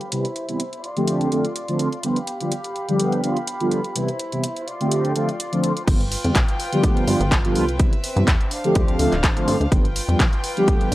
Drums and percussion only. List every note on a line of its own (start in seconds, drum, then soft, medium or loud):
0.01 closed hi-hat soft
0.12 closed hi-hat medium
0.25 closed hi-hat soft
0.36 closed hi-hat medium
0.49 closed hi-hat soft
0.60 closed hi-hat medium
0.73 closed hi-hat soft
0.84 closed hi-hat soft
0.97 closed hi-hat soft
1.08 closed hi-hat medium
1.21 closed hi-hat soft
1.32 closed hi-hat medium
1.45 closed hi-hat soft
1.56 closed hi-hat medium
1.68 closed hi-hat soft
1.79 closed hi-hat medium
1.92 closed hi-hat soft
2.03 closed hi-hat medium
2.16 closed hi-hat soft
2.27 closed hi-hat medium
2.41 closed hi-hat soft
2.52 closed hi-hat medium
2.64 closed hi-hat soft
2.76 closed hi-hat soft
2.89 closed hi-hat soft
3.00 closed hi-hat medium
3.12 closed hi-hat soft
3.24 closed hi-hat medium
3.37 closed hi-hat soft
3.47 closed hi-hat medium
3.60 closed hi-hat soft
3.71 closed hi-hat medium
3.84 closed hi-hat soft
3.96 closed hi-hat medium
4.08 closed hi-hat soft
4.19 closed hi-hat medium
4.32 closed hi-hat soft
4.44 closed hi-hat medium
4.56 closed hi-hat soft
4.68 closed hi-hat soft
4.81 closed hi-hat soft
4.91 closed hi-hat medium
5.05 closed hi-hat soft
5.16 closed hi-hat medium
5.29 closed hi-hat soft
5.40 closed hi-hat medium
5.53 closed hi-hat soft
5.64 closed hi-hat medium
5.77 closed hi-hat soft
5.88 kick loud
5.88 closed hi-hat medium
5.88 crash loud
6.01 closed hi-hat soft
6.12 open hi-hat loud
6.24 closed hi-hat soft
6.35 kick loud
6.35 clap loud
6.35 closed hi-hat loud
6.48 closed hi-hat soft
6.60 open hi-hat loud
6.73 closed hi-hat soft
6.84 kick loud
6.84 closed hi-hat loud
6.97 closed hi-hat soft
7.08 open hi-hat loud
7.21 closed hi-hat soft
7.32 kick loud
7.32 clap loud
7.32 closed hi-hat loud
7.45 closed hi-hat soft
7.55 open hi-hat loud
7.69 closed hi-hat soft
7.79 kick loud
7.79 closed hi-hat medium
7.93 closed hi-hat soft
8.04 open hi-hat loud
8.17 closed hi-hat soft
8.28 kick loud
8.28 clap loud
8.28 closed hi-hat medium
8.41 closed hi-hat soft
8.51 open hi-hat loud
8.64 closed hi-hat soft
8.75 kick loud
8.75 closed hi-hat loud
8.88 closed hi-hat soft
8.99 open hi-hat loud
9.12 clap soft
9.12 closed hi-hat soft
9.24 kick loud
9.24 clap loud
9.24 closed hi-hat medium
9.37 closed hi-hat soft
9.48 open hi-hat loud
9.61 closed hi-hat soft
9.72 kick loud
9.72 closed hi-hat medium
9.85 closed hi-hat soft
9.96 open hi-hat loud
10.09 closed hi-hat soft
10.20 kick loud
10.20 clap loud
10.20 closed hi-hat medium
10.33 closed hi-hat soft
10.44 open hi-hat loud
10.57 closed hi-hat soft
10.68 kick loud
10.68 closed hi-hat medium
10.81 closed hi-hat soft